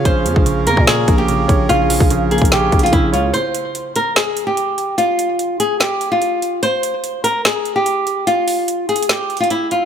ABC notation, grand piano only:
X:1
M:4/4
L:1/8
Q:1/4=146
K:Bbdor
V:1 name="Grand piano" clef=bass
D, F, D, B, D,2 D, d | D, F, D, B, D,2 D, d | z8 | z8 |
z8 | z8 |]